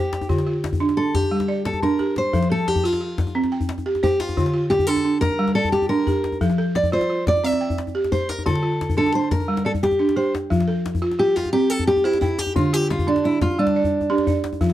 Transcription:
Already playing: balafon G4 C5, steel-string acoustic guitar G4
0.13 djembe slap
0.21 djembe tone
0.29 balafon D3 F4, djembe slap, djembe bass
0.38 djembe slap
0.47 balafon F4
0.56 djembe slap
0.64 djembe slap
0.73 djembe tone, djembe bass
0.80 balafon D4
0.89 djembe slap
0.97 balafon D4, steel-string acoustic guitar A4
1.15 steel-string acoustic guitar G4, djembe slap, djembe bass
1.23 djembe tone
1.31 balafon G3
1.40 djembe slap
1.48 balafon D5
1.65 steel-string acoustic guitar A4, djembe slap
1.73 djembe tone
1.82 balafon D4, steel-string acoustic guitar A#4, djembe bass
1.99 balafon G4, djembe slap
2.16 steel-string acoustic guitar C5, djembe slap
2.33 balafon F3 A4, djembe bass
2.42 djembe slap
2.50 balafon A4, steel-string acoustic guitar A4
2.68 steel-string acoustic guitar G4, djembe slap
2.76 djembe tone, djembe bass
2.84 balafon F4, steel-string acoustic guitar F4
2.93 djembe slap
3.01 balafon F4
3.18 djembe slap, djembe bass
3.27 djembe tone
3.35 balafon C4
3.44 djembe slap
3.52 balafon G5, djembe slap
3.61 djembe bass
3.69 djembe slap
3.78 djembe tone
3.86 balafon G4
3.95 djembe slap
4.03 steel-string acoustic guitar G4, balafon C5, djembe bass
4.20 steel-string acoustic guitar F4, djembe slap
4.29 djembe tone
4.37 balafon D3 F4, djembe bass
4.46 djembe slap
4.54 balafon F4
4.70 steel-string acoustic guitar G4, djembe slap
4.79 djembe bass
4.87 balafon D4, steel-string acoustic guitar A4
4.96 djembe slap
5.05 balafon D4
5.21 steel-string acoustic guitar A#4, djembe slap, djembe bass
5.31 djembe tone
5.39 balafon G3
5.48 djembe slap
5.55 steel-string acoustic guitar A4, balafon D5, djembe slap
5.65 djembe bass
5.72 steel-string acoustic guitar G4, djembe slap
5.82 djembe tone
5.89 balafon D4, steel-string acoustic guitar A#4
6.07 balafon G4, djembe bass
6.24 djembe slap
6.32 djembe tone
6.41 balafon F3 A4, djembe bass
6.50 djembe slap
6.58 balafon A4, djembe slap
6.75 steel-string acoustic guitar D5, djembe slap
6.83 djembe tone, djembe bass
6.92 balafon F4, steel-string acoustic guitar C5
7.01 djembe slap
7.10 balafon F4
7.27 steel-string acoustic guitar D5, djembe slap, djembe bass
7.36 djembe tone
7.44 balafon C4, steel-string acoustic guitar E5
7.52 djembe slap
7.61 balafon G5
7.70 djembe bass
7.78 djembe slap
7.87 djembe tone
7.95 balafon G4
8.04 djembe slap
8.12 steel-string acoustic guitar C5, balafon C5, djembe bass
8.29 steel-string acoustic guitar A#4, djembe slap
8.39 djembe tone
8.46 balafon D3 F4, steel-string acoustic guitar A4, djembe bass
8.55 djembe slap
8.63 balafon F4
8.73 djembe slap
8.81 djembe slap
8.90 djembe tone, djembe bass
8.97 balafon D4, steel-string acoustic guitar A4
9.06 djembe slap
9.14 balafon D4, steel-string acoustic guitar C5
9.23 djembe slap
9.31 steel-string acoustic guitar A#4, djembe slap, djembe bass
9.40 djembe tone
9.48 balafon G3
9.57 djembe slap
9.65 steel-string acoustic guitar A4, balafon D5
9.75 djembe bass
9.83 steel-string acoustic guitar G4, djembe slap
9.91 djembe slap, djembe tone
9.99 balafon D4
10.09 djembe slap
10.16 balafon G4, steel-string acoustic guitar C5
10.35 djembe slap
10.50 balafon F3 F4, djembe bass
10.60 djembe slap
10.68 balafon A4, djembe slap
10.86 djembe slap
10.95 djembe tone, djembe bass
11.02 balafon F4
11.11 djembe slap
11.19 balafon F4, steel-string acoustic guitar G4
11.36 steel-string acoustic guitar F4, djembe slap
11.45 djembe tone
11.53 balafon C4, steel-string acoustic guitar G4
11.70 steel-string acoustic guitar A4, balafon G5, djembe slap
11.79 djembe bass
11.87 steel-string acoustic guitar G4, djembe slap
11.97 djembe tone
12.04 steel-string acoustic guitar E4, balafon G4 C5
12.13 djembe slap
12.21 steel-string acoustic guitar E4, balafon G5, djembe bass
12.39 steel-string acoustic guitar G4, djembe slap
12.47 djembe tone
12.56 balafon D3 D4, steel-string acoustic guitar F4, djembe bass
12.73 balafon F4, steel-string acoustic guitar G4
12.90 steel-string acoustic guitar F4, djembe slap
12.99 djembe tone, djembe bass
13.07 balafon D4, steel-string acoustic guitar D4
13.16 djembe slap
13.24 balafon D4, steel-string acoustic guitar E4
13.41 steel-string acoustic guitar F4, djembe slap, djembe bass
13.50 djembe tone
13.59 balafon G3, steel-string acoustic guitar D4
13.67 djembe slap
13.76 balafon D5, djembe slap
13.84 djembe bass
14.01 djembe tone
14.10 balafon D4 G4
14.18 djembe slap
14.27 balafon D5, djembe bass
14.44 djembe slap
14.53 djembe tone
14.61 balafon F3 F4, djembe bass
14.70 djembe slap

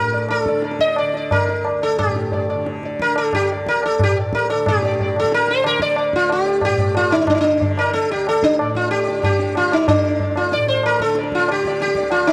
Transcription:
Already playing: tanpura D2 D3, sitar A#4
0.00 tanpura A2
0.12 sitar D5, tabla te
0.29 sitar A4, tabla na
0.46 tanpura D3, sitar D5, tabla ke
0.62 sitar D5, tabla te
0.71 tabla te
0.79 sitar D#5, tabla ke
0.88 tabla te
0.96 sitar D5, tabla na
1.02 tanpura D3
1.14 sitar D5, tabla te
1.31 sitar A#4, tabla na, tabla ge
1.49 sitar D5, tabla te
1.53 tanpura D2
1.65 tabla na
1.82 sitar A4, tabla na
1.99 sitar G4, tabla na, tabla ge
2.03 tanpura A2
2.16 tabla te
2.32 sitar D5, tabla tin, tabla ge
2.50 sitar D5, tabla na
2.55 tanpura D3
2.66 tabla te
2.83 sitar D5, tabla te
3.00 sitar A#4, tabla ke
3.04 tanpura D3
3.16 sitar A4, tabla na
3.33 sitar G4, tabla na, tabla ge
3.52 tanpura D2, sitar D5
3.66 sitar A#4, tabla ke
3.83 sitar A4, tabla na
3.99 tabla na, tabla ge
4.03 tanpura A2, sitar G4
4.20 sitar D5
4.33 sitar A#4, tabla ke
4.50 sitar A4, tabla na
4.55 tanpura D3
4.65 tanpura A2, sitar G4 D5, tabla na, tabla ge
4.83 sitar D5, tabla te
5.00 sitar D5, tabla tin, tabla ge
5.15 tanpura D3, sitar A4, tabla na
5.24 tabla ke
5.32 sitar A#4, tabla te
5.48 sitar C5, tabla te
5.64 tanpura D3, sitar A#4, tabla na
5.80 sitar D5, tabla ke
5.96 sitar D5, tabla na
6.13 tanpura D2, sitar F4, tabla ke
6.30 sitar G4, tabla na
6.46 sitar D5, tabla te
6.61 tanpura A2, sitar G4, tabla na, tabla ge
6.78 sitar D5, tabla ge
6.95 sitar F4, tabla na
7.10 tanpura D3, sitar D#4, tabla na
7.27 sitar D4, tabla na, tabla ge
7.35 sitar D#4
7.41 sitar D4, tabla te
7.61 tanpura D3, sitar D5, tabla tin, tabla ge
7.77 sitar A#4, tabla na
7.93 sitar A4, tabla te
8.11 tanpura D2, sitar G4, tabla te
8.27 sitar A4, tabla na
8.43 sitar D4, tabla ke
8.59 tanpura A2, sitar D5, tabla na
8.75 sitar F4, tabla ke
8.91 sitar G4, tabla na
9.07 tanpura D3, sitar D5, tabla te
9.23 sitar G4, tabla na, tabla ge
9.39 tabla te
9.55 sitar F4, tabla na
9.59 tanpura D3
9.72 sitar D#4, tabla na
9.88 sitar D4, tabla na, tabla ge
10.04 sitar D5, tabla te
10.08 tanpura D2
10.20 sitar D5, tabla tin, tabla ge
10.36 sitar F4, tabla na
10.52 tanpura A2, sitar D5, tabla te
10.68 sitar C5, tabla te
10.83 sitar A#4, tabla na
11.00 sitar A4, tabla ke
11.04 tanpura D3
11.15 sitar D5, tabla te
11.24 tabla te
11.32 sitar F4, tabla ke
11.40 tabla te
11.48 sitar G4, tabla na
11.52 tanpura D3
11.65 sitar D5, tabla ke
11.72 tabla te
11.80 sitar G4, tabla te
11.88 tabla te
11.95 sitar D5, tabla ke
12.00 tanpura D2, tabla te
12.11 sitar F4, tabla na
12.27 sitar D#4, tabla na

